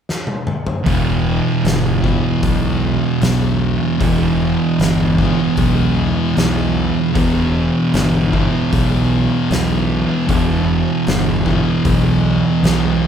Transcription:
0.09 snare
0.27 high tom
0.47 mid tom
0.67 floor tom
0.86 E1 E2 B2 E3, kick, open hi-hat
1.64 G1, snare, open hi-hat
2.04 E2 B2 E3, kick
2.43 B1, kick, open hi-hat
3.21 B1 E2 B2 E3, snare, open hi-hat
3.99 E1 E2 B2 E3, kick, open hi-hat
4.79 G1, snare, open hi-hat
5.18 E2 B2 E3, kick
5.57 B1, kick, open hi-hat
6.35 B1 E2 B2 E3, snare, open hi-hat
7.15 E1 E2 B2 E3, kick, open hi-hat
7.94 G1, snare, open hi-hat
8.32 E2 B2 E3, kick
8.73 B1, kick, open hi-hat
9.50 B1 E2 B2 E3, snare, open hi-hat
10.29 E1 E2 B2 E3, kick, open hi-hat
11.07 G1, snare, open hi-hat
11.45 E2 B2 E3, kick
11.85 B1, kick, open hi-hat
12.63 B1 E2 B2 E3, snare, open hi-hat

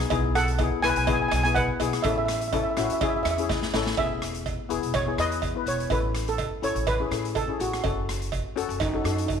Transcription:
0.00 cross-stick, closed hi-hat
0.10 B1 B3 E4 G#4, kick, closed hi-hat, cowbell
0.35 A4 F#5, cross-stick, closed hi-hat
0.48 closed hi-hat
0.59 B3 E4 G#4, kick, closed hi-hat, cowbell
0.82 B1 B3 E4 B4 G#5, cross-stick, closed hi-hat
0.90 G#5
0.96 B1 G#5, closed hi-hat
1.05 B3 E4 G#4 G#5, kick, closed hi-hat, cowbell
1.13 G#5
1.22 G#5
1.28 B1 G#5, cross-stick, closed hi-hat, cowbell
1.36 G#5
1.44 B3 E4 G#4 G#5, closed hi-hat
1.55 B4 F#5, kick, closed hi-hat, cowbell
1.80 B1 B3 E4 G#4, closed hi-hat, cowbell
1.93 cross-stick, closed hi-hat
2.02 A1 C#4 E4 A4 E5, kick, closed hi-hat, cowbell
2.10 E5
2.18 E5
2.25 E5, cross-stick, closed hi-hat
2.34 E5
2.41 E5, closed hi-hat
2.48 E5
2.53 C#4 E4 A4 E5, kick, closed hi-hat, cowbell
2.64 E5
2.71 E5
2.77 A1 C#4 E4 F#4 E5, cross-stick, closed hi-hat
2.85 E5
2.90 E2 E5, closed hi-hat
3.01 C#4 E4 G#4 E5, kick, closed hi-hat, cowbell
3.09 E5
3.16 E5
3.23 E2 E5, cross-stick, closed hi-hat, cowbell
3.31 E5
3.38 C#4 E4 G#4, closed hi-hat
3.49 kick, snare, cowbell
3.62 snare
3.73 A1 C#4 E4 A4, snare, cowbell
3.86 snare
3.97 E1 B3 E4 G#4 E5, kick, closed hi-hat, cowbell
4.22 cross-stick, closed hi-hat
4.34 closed hi-hat
4.46 kick, closed hi-hat, cowbell
4.69 E1 B3 E4 G#4, closed hi-hat
4.83 E1, closed hi-hat
4.94 C#5, kick, cross-stick, closed hi-hat, cowbell
5.06 B3 E4 G#4
5.18 E2 B3 E4 B4 D#5, cross-stick, closed hi-hat
5.32 closed hi-hat
5.42 kick, closed hi-hat, cowbell
5.55 B3 E4 B4
5.66 E1 C#5, closed hi-hat
5.80 closed hi-hat
5.90 A1 C#4 E4 A4 B4, kick, closed hi-hat, cowbell
6.15 cross-stick, closed hi-hat
6.28 A4, closed hi-hat
6.38 kick, closed hi-hat, cowbell
6.62 A1 C#4 E4 A4 C#5, closed hi-hat
6.75 A1, closed hi-hat
6.87 B4, kick, cross-stick, closed hi-hat, cowbell
7.00 C#4 E4 G#4
7.11 A2 C#4 E4 A4, cross-stick, closed hi-hat
7.25 closed hi-hat
7.35 A4, kick, closed hi-hat, cowbell
7.48 C#4 E4 G#4
7.60 A1 F#4, closed hi-hat
7.73 cross-stick, closed hi-hat
7.83 F#1 C#4 F#4 A4, kick, closed hi-hat, cowbell
8.09 cross-stick, closed hi-hat
8.22 closed hi-hat
8.32 kick, closed hi-hat, cowbell
8.56 F#1 C#4 F#4 A4, closed hi-hat
8.69 F#1, closed hi-hat
8.80 D#4, kick, cross-stick, closed hi-hat, cowbell
8.89 D#4
8.93 C#4 D#4 F#4 A4
9.04 F#2 C#4 D#4 F#4 A4, cross-stick, closed hi-hat
9.11 D#4
9.18 D#4, closed hi-hat
9.26 D#4, kick, closed hi-hat, cowbell
9.34 D#4

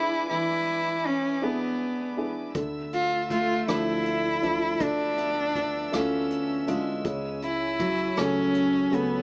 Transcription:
Already playing: E3 D4 E4 G#4 B4 E5 G#5 D6
0.30 E3 E4
1.06 C#4
1.42 B3 D4 E4 G#4
2.17 D4 E4 G#4
2.55 D2 D3 E5 E6, kick, closed hi-hat
2.93 F4, closed hi-hat
3.30 A3 F4, kick, closed hi-hat
3.68 D2 F3 D4 E4, cross-stick, closed hi-hat
4.06 closed hi-hat
4.43 D2 F3 D4 E4, closed hi-hat
4.80 D2 D3 D4, kick, closed hi-hat
5.18 B3, closed hi-hat
5.55 kick, closed hi-hat
5.92 D2 A3 C#4 E4 F4, cross-stick, closed hi-hat
6.30 closed hi-hat
6.67 D2 G#3 D4 E4 F4, closed hi-hat
7.05 C#2 C#3 C#5 G#5, kick, closed hi-hat
7.42 E4, closed hi-hat
7.80 F#3, kick, closed hi-hat
8.17 C#2 A3 C#4 G#4, cross-stick, closed hi-hat
8.55 closed hi-hat
8.91 C#2 A3 B3 C#4 G#4, closed hi-hat

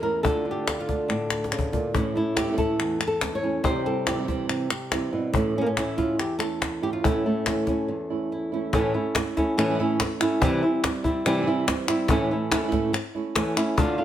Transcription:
Already playing: E2 A3
0.02 A3 C#4 E4 A#4
0.23 D3 A3 D4 F4 A4, cajon bass
0.45 A3 D4 F4
0.51 G4
0.67 D3 A3 D4 F4, cajon slap, clap
0.80 F4
0.88 A3 D4 F4, cajon bass
1.08 A2 D4, muted nylon-string guitar stroke, clap
1.30 cajon slap, clap
1.44 cajon slap
1.51 C#3, clap
1.58 cajon bass
1.72 A#2 A3 D4 F4, cajon bass
1.94 A2 E3 A3 C#4 E4, cajon bass
2.14 A3 C#4 E4
2.35 A3 C#4 E4 G4, cajon slap, clap
2.43 E3 A3 C#4 E4
2.48 E3 A3 C#4 E4
2.52 E3 A3 C#4 E4
2.57 A2 E3 A3 C#4 E4 A4, cajon bass
2.79 E2, clap
2.99 muted nylon-string guitar stroke, clap
3.07 A4
3.21 E3 A3 C#4 E4, cajon slap, clap
3.35 C#5
3.43 A3 C#4 E4, cajon slap
3.64 C3 E3 G3 C4 E4 G4 C5, cajon bass, clap
3.84 G3 C4 E4 A4, cajon slap
4.05 G3 C4 E4 G4, cajon slap, clap
4.14 E3 G3 C4 E4
4.19 E3 G3 C4 E4
4.23 E3 G3 C4 E4
4.27 C3 E3 G3 C4 E4, cajon bass
4.49 C3, clap
4.70 G4, muted nylon-string guitar stroke, cajon slap, clap
4.91 C3 E3 G3 C4 E4, cajon slap, clap
5.12 B2 G3 C4 E4, cajon slap
5.34 A2 E3 A3 C#4 E4, cajon bass
5.56 A3 C#4 E4
5.61 A#3
5.66 C#4
5.76 E3 A3 C#4 E4, cajon slap, clap
5.98 A3 C#4 E4 F4, cajon bass
6.19 E2 G4, muted nylon-string guitar stroke, clap
6.39 A3 C#4 E4 A4, clap
6.62 cajon slap, clap
6.82 A3 C#4 E4 G4
6.93 F4
7.03 A2 E3 A3 C#4 E4, cajon bass
7.25 A3 C#4 E4, cajon slap
7.46 E3 A3 C#4 E4, cajon slap, clap
7.67 A3 C#4 E4, cajon bass
7.88 E2, muted nylon-string guitar stroke
8.10 A3 C#4 E4
8.32 E4
8.52 A3 C#4 E4
8.73 A2 E3 A3 C#4 E4, cajon bass
8.94 A3 C#4 E4
9.15 A3 C#4 E4, muted nylon-string guitar stroke, cajon slap, clap
9.37 A3 C#4 E4, cajon bass, cajon slap
9.57 A2 E3 A3 C#4 E4, muted nylon-string guitar stroke, clap
9.70 E3 A3 C#4 E4
9.74 E3 A3 C#4 E4
9.79 A2 E3 A3 C#4 E4, cajon slap
9.99 E3 A3 C#4 E4, muted nylon-string guitar stroke, cajon slap, clap
10.20 A3 C#4 E4, clap
10.40 C3 E3 G3 C4 E4, cajon bass
10.61 G3 C4 E4
10.83 G3 C4 E4, muted nylon-string guitar stroke, cajon slap, clap
11.04 G3 C4 E4, cajon bass
11.25 C3 E3 G3 C4 E4, muted nylon-string guitar stroke, clap
11.38 E3 G3 C4 E4
11.42 E3 G3 C4 E4
11.46 C3 E3 G3 C4 E4
11.67 E3 G3 C4 E4, muted nylon-string guitar stroke, cajon slap, clap
11.88 G3 C4 E4, clap
12.08 A2 E3 A3 C#4 E4, cajon bass, clap
12.31 A3 C#4 E4
12.51 A3 C#4 E4, cajon slap, clap
12.63 E3 A3 C#4 E4
12.67 E3 A3 C#4 E4
12.72 A2 E3 A3 C#4 E4, cajon bass, cajon slap
12.93 muted nylon-string guitar stroke, clap
13.14 A3 C#4 E4, cajon slap
13.35 E3 A3 C#4 E4, cajon slap, clap
13.56 A3 C#4 E4, clap
13.77 D3 A3 D4 F4, cajon bass
13.98 A3 D4 F4, cajon slap

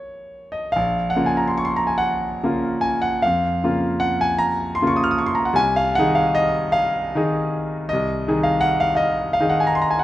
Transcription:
Already playing: A#1 C#3 A#3 F4 C#5
0.52 D#5
0.72 A#1 F5
1.10 F#5
1.16 C#3 A#3 F4
1.26 G#5
1.37 A#5
1.48 C6
1.57 C#6
1.65 C6
1.76 A#5
1.87 G#5
1.98 F#5
2.43 C#3 A#3 F4
2.81 G#5
3.02 F#5
3.22 F2 F5
3.64 C#3 A#3 F4
4.00 F#5
4.21 G#5
4.39 A#5
4.75 C6
4.82 C#3 A#3 F4
4.87 C#6
4.96 D#6
5.04 F6
5.11 D#6
5.18 C#6
5.26 C6
5.35 A#5
5.45 F#5
5.53 C2 G#5
5.76 F5
5.95 D#3 D#4 G#4 F#5
6.15 F5
6.35 D#5
6.72 F5
7.15 D#3 D#4 G#4
7.89 C2 D#5
8.28 D#3 D#4 G#4
8.43 F5
8.61 F#5
8.80 F5
8.95 D#5 F5
9.33 F5
9.40 D#3 D#4 G#4
9.49 F#5
9.60 G#5
9.67 A#5
9.75 C6
9.82 A#5
9.91 G#5
9.99 F#5

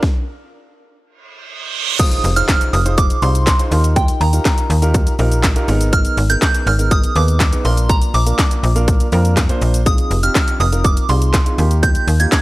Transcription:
0.03 kick, snare
1.01 reverse cymbal
1.99 D#4 F4 G#4 C5 D#6, kick, closed hi-hat, crash, impact, shaker
2.11 closed hi-hat, shaker
2.24 F1, open hi-hat, shaker
2.36 D#4 F4 G#4 C5 F6, closed hi-hat, shaker
2.49 kick, snare, clap, closed hi-hat, shaker
2.61 closed hi-hat, shaker
2.73 F1 D#6, open hi-hat, shaker
2.85 D#4 F4 G#4 C5, closed hi-hat, shaker
2.98 D6, kick, closed hi-hat, shaker
3.10 closed hi-hat, shaker
3.22 C2 D#4 F4 G#4 C5 C6, open hi-hat, shaker
3.35 closed hi-hat, shaker
3.47 kick, snare, clap, closed hi-hat, shaker
3.59 D#4 F4 G#4 C5, closed hi-hat, shaker
3.71 D#2 D#4 F4 G4 A#4, open hi-hat, shaker
3.84 closed hi-hat, shaker
3.96 G5, kick, closed hi-hat, shaker
4.08 closed hi-hat, shaker
4.21 D#2 A#5, open hi-hat, shaker
4.33 D#4 F4 G4 A#4, closed hi-hat, shaker
4.45 kick, snare, clap, closed hi-hat, shaker
4.58 closed hi-hat, shaker
4.70 D#2, open hi-hat, shaker
4.82 D#4 F4 G4 A#4, closed hi-hat, shaker
4.94 kick, closed hi-hat, shaker
5.07 closed hi-hat, shaker
5.19 A#1 D#4 F4 G4 A#4, open hi-hat, shaker
5.32 closed hi-hat, shaker
5.43 kick, snare, clap, closed hi-hat, shaker
5.56 D#4 F4 G4 A#4, closed hi-hat, shaker
5.68 G#1 B3 D#4 G#4 A#4, open hi-hat, shaker
5.81 closed hi-hat, shaker
5.93 F6, kick, closed hi-hat, shaker
6.05 closed hi-hat, shaker
6.17 G#1, open hi-hat, shaker
6.29 B3 D#4 G#4 A#4 G6, closed hi-hat, shaker
6.42 kick, snare, clap, closed hi-hat, shaker
6.55 closed hi-hat, shaker
6.67 G#1 F6, open hi-hat, shaker
6.78 B3 D#4 G#4 A#4, closed hi-hat, shaker
6.91 D#6, kick, closed hi-hat, shaker
7.04 closed hi-hat, shaker
7.15 D#2 B3 D#4 G#4 B4 D6, open hi-hat, shaker
7.28 closed hi-hat, shaker
7.40 kick, snare, clap, closed hi-hat, shaker
7.52 B3 D#4 G#4 B4, closed hi-hat, shaker
7.64 A#1 A#3 D4 F4 A#4 C6, open hi-hat, shaker
7.77 closed hi-hat, shaker
7.89 A#5, kick, closed hi-hat, shaker
8.02 closed hi-hat, shaker
8.14 A#1 D6, open hi-hat, shaker
8.26 A#3 D4 F4 A#4, closed hi-hat, shaker
8.39 kick, snare, clap, closed hi-hat, shaker
8.51 closed hi-hat, shaker
8.63 A#1, open hi-hat, shaker
8.75 A#3 D4 F4 A#4, closed hi-hat, shaker
8.88 kick, closed hi-hat, shaker
9.00 closed hi-hat, shaker
9.12 F2 A#3 D4 F4 A#4, open hi-hat, shaker
9.25 closed hi-hat, shaker
9.37 kick, snare, clap, closed hi-hat, shaker
9.49 A#3 D4 F4 C5, closed hi-hat, shaker
9.62 A#1, open hi-hat, shaker
9.74 closed hi-hat, shaker
9.86 C4 D#4 F4 G#4 D#6, kick, closed hi-hat, shaker
9.98 closed hi-hat, shaker
10.11 F1, open hi-hat, shaker
10.23 C4 D#4 F4 G4 F6, closed hi-hat, shaker
10.35 kick, snare, clap, closed hi-hat, shaker
10.48 closed hi-hat, shaker
10.60 F1 D#6, open hi-hat, shaker
10.72 C4 D#4 F4 A#4, closed hi-hat, shaker
10.84 D6, kick, closed hi-hat, shaker
10.97 closed hi-hat, shaker
11.09 C2 C4 D#4 F4 G#4 C6, open hi-hat, shaker
11.22 closed hi-hat, shaker
11.34 kick, snare, clap, closed hi-hat, shaker
11.46 C4 D#4 F4 G#4, closed hi-hat, shaker
11.58 D#2 A#3 D#4 F4 G4, open hi-hat, shaker
11.71 closed hi-hat, shaker
11.83 G6, kick, closed hi-hat, shaker
11.95 closed hi-hat, shaker
12.07 D#2, open hi-hat, shaker
12.20 A#3 D#4 F4 G4 G#6, closed hi-hat, shaker
12.32 kick, snare, clap, closed hi-hat, shaker

